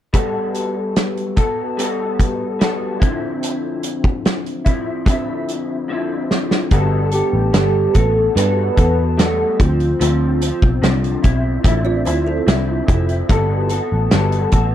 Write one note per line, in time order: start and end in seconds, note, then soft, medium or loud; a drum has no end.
0.13 1.37 G3 medium
0.13 1.37 B3 medium
0.13 1.38 F#4 medium
0.13 1.36 A4 medium
0.13 kick medium
0.13 closed hi-hat medium
0.55 closed hi-hat medium
0.96 snare medium
0.96 closed hi-hat medium
1.17 closed hi-hat soft
1.36 1.77 B3 soft
1.36 1.79 F#4 soft
1.36 1.78 A4 soft
1.36 kick medium
1.36 closed hi-hat medium
1.77 2.58 G3 medium
1.77 2.60 B3 medium
1.77 2.61 F#4 medium
1.77 2.62 A4 medium
1.77 closed hi-hat medium
2.19 kick medium
2.19 closed hi-hat medium
2.59 3.01 G3 medium
2.59 3.02 B3 medium
2.59 2.99 F#4 medium
2.59 snare medium
2.59 closed hi-hat medium
2.63 3.03 A4 medium
3.00 4.66 C4 medium
3.00 4.63 E4 medium
3.00 kick medium
3.00 closed hi-hat medium
3.04 4.70 D3 medium
3.04 4.67 F3 medium
3.43 closed hi-hat medium
3.83 closed hi-hat medium
4.04 kick medium
4.25 snare loud
4.25 closed hi-hat medium
4.46 closed hi-hat soft
4.65 5.06 F3 soft
4.65 5.07 C4 soft
4.65 5.07 E4 soft
4.65 kick medium
4.65 closed hi-hat medium
5.06 5.88 D3 medium
5.06 5.88 F3 medium
5.06 5.90 C4 medium
5.06 kick medium
5.06 snare soft
5.06 closed hi-hat medium
5.10 5.91 E4 medium
5.49 closed hi-hat medium
5.88 9.38 D3 medium
5.88 6.71 F3 medium
5.88 6.72 C4 medium
5.88 6.73 E4 medium
6.31 snare medium
6.51 snare medium
6.71 7.21 G1 medium
6.71 7.13 G3 medium
6.71 7.13 B3 medium
6.71 7.14 F#4 medium
6.71 7.10 A4 medium
6.71 kick medium
6.71 closed hi-hat medium
7.11 7.97 G4 loud
7.11 7.53 A4 soft
7.11 closed hi-hat medium
7.16 7.53 B3 soft
7.33 7.50 A1 medium
7.53 7.87 G1 medium
7.53 7.95 G3 medium
7.53 7.95 B3 medium
7.53 7.92 A4 medium
7.53 snare loud
7.53 closed hi-hat medium
7.94 8.28 A1 medium
7.94 8.35 B3 soft
7.94 8.37 F#4 soft
7.94 8.36 A4 soft
7.94 8.38 A4 medium
7.94 kick medium
7.94 closed hi-hat medium
8.35 8.69 G2 medium
8.35 8.77 G3 soft
8.35 8.78 B3 medium
8.35 8.77 F#4 medium
8.35 8.75 A4 medium
8.35 9.21 B4 loud
8.35 snare soft
8.35 closed hi-hat medium
8.76 9.43 E2 medium
8.76 9.18 F#4 soft
8.76 9.18 A4 soft
8.76 kick medium
8.76 closed hi-hat medium
8.80 9.17 B3 soft
9.17 9.59 G3 medium
9.17 9.60 B3 medium
9.17 9.60 F#4 medium
9.17 9.62 A4 loud
9.17 9.61 A4 medium
9.17 snare loud
9.17 closed hi-hat medium
9.60 9.93 D2 medium
9.60 9.99 F3 soft
9.60 10.01 C4 soft
9.60 11.25 F4 medium
9.60 kick medium
9.60 closed hi-hat medium
9.80 closed hi-hat soft
10.00 10.50 D2 medium
10.00 10.41 D3 medium
10.00 10.42 F3 medium
10.00 10.42 C4 medium
10.00 closed hi-hat medium
10.42 10.82 F3 soft
10.42 10.83 C4 soft
10.42 closed hi-hat medium
10.62 10.79 B1 medium
10.62 kick medium
10.82 11.16 C2 medium
10.82 11.24 D3 medium
10.82 11.24 F3 medium
10.82 11.24 C4 medium
10.82 snare loud
10.82 closed hi-hat medium
11.04 closed hi-hat soft
11.23 11.57 B1 medium
11.23 11.65 C4 soft
11.23 11.64 E4 medium
11.23 kick medium
11.23 closed hi-hat medium
11.27 11.64 F3 soft
11.63 12.07 A1 medium
11.63 12.05 D3 medium
11.63 12.06 F3 medium
11.63 12.07 C4 medium
11.63 12.04 E4 medium
11.63 11.84 E5 medium
11.63 kick loud
11.63 closed hi-hat medium
11.85 12.05 F4 medium
11.85 12.05 D5 medium
12.05 12.39 D2 medium
12.05 12.48 C4 soft
12.05 12.47 E4 medium
12.05 12.26 E4 medium
12.05 12.25 C5 medium
12.05 closed hi-hat medium
12.10 12.47 F3 soft
12.27 13.26 C4 medium
12.27 13.25 A4 medium
12.47 12.80 C2 medium
12.47 12.88 D3 medium
12.47 12.89 F3 medium
12.47 12.88 C4 medium
12.47 12.86 E4 medium
12.47 snare loud
12.47 closed hi-hat medium
12.87 13.21 F1 medium
12.87 13.28 F3 soft
12.87 13.29 C4 soft
12.87 13.29 E4 medium
12.87 kick medium
12.87 closed hi-hat medium
13.09 closed hi-hat soft
13.29 13.79 G1 medium
13.29 13.70 G3 medium
13.29 13.71 B3 medium
13.29 13.71 F#4 medium
13.29 13.69 A4 medium
13.29 kick medium
13.29 closed hi-hat medium
13.69 14.12 F#4 medium
13.69 14.12 A4 medium
13.69 closed hi-hat medium
13.74 14.11 B3 soft
13.92 14.08 A1 medium
14.11 14.45 G1 medium
14.11 14.53 G3 medium
14.11 14.53 B3 medium
14.11 14.53 F#4 medium
14.11 14.51 A4 medium
14.11 snare loud
14.11 closed hi-hat medium
14.32 closed hi-hat soft
14.52 14.75 A1 medium
14.52 14.75 F#4 soft
14.52 14.75 A4 medium
14.52 kick medium
14.52 closed hi-hat medium
14.56 14.75 B3 soft